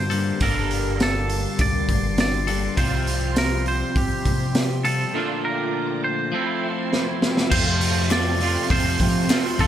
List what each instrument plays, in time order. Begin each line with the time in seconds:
Already playing: fingered electric bass G2, clean electric guitar G2 D3 G3 A#3 D4 A4 C5, string machine G4 A5 D6
0.10 clean electric guitar D3 G3 A#3 D4 A4, open hi-hat
0.14 clean electric guitar G2
0.40 fingered electric bass G1, clean electric guitar G2 D3 G3 A#3 D4 A4 A#4, string machine C6, kick, open hi-hat
0.71 open hi-hat
1.00 clean electric guitar A4, snare, open hi-hat
1.29 open hi-hat
1.59 fingered electric bass D2, clean electric guitar D5, kick, open hi-hat
1.89 fingered electric bass G1, kick, open hi-hat
2.18 clean electric guitar D5, snare, open hi-hat
2.47 clean electric guitar G2 D3 G3 A#3 D4 A4, open hi-hat
2.76 fingered electric bass C2, clean electric guitar C3 F3 G3 C4 F4 C5, string machine G4 C5 G5, kick, open hi-hat
3.07 open hi-hat
3.36 clean electric guitar A#4, snare, open hi-hat
3.66 clean electric guitar C5, open hi-hat
3.95 fingered electric bass C2, clean electric guitar G4, kick, open hi-hat
4.25 fingered electric bass C3, kick, open hi-hat
4.55 snare, open hi-hat
4.85 clean electric guitar C3 F3 G3 C4 F4 A4, open hi-hat
5.14 clean electric guitar A#2 D3 F3 A3 D4 F4, string machine D5 A5 A#5
5.45 clean electric guitar A#4
6.04 clean electric guitar C5
6.32 clean electric guitar F3 A3 C4 E4, string machine E5 C6
6.93 snare
7.22 snare
7.37 snare
7.50 clean electric guitar F2 C3 F3 A3 C4 F4 C5, fingered electric bass F2, string machine A4 C5 F5 C6, glockenspiel C6, kick, crash
7.81 open hi-hat
8.10 clean electric guitar F2 C3 F3 A3 C4 F4 D5, glockenspiel D6, snare, clap, open hi-hat
8.40 clean electric guitar F2 C3 F3 A3 C4 F4, open hi-hat
8.69 clean electric guitar F2 C3 F3 A3 C4 F4 C5, fingered electric bass F2, glockenspiel C6, kick, open hi-hat
9.00 fingered electric bass F3, kick, open hi-hat
9.29 clean electric guitar F2 C3 F3 A3 C4 F4, snare, clap, open hi-hat
9.58 fingered electric bass C2, clean electric guitar F2 C3 F3 A3 C4 F4 A4, glockenspiel A5, kick, open hi-hat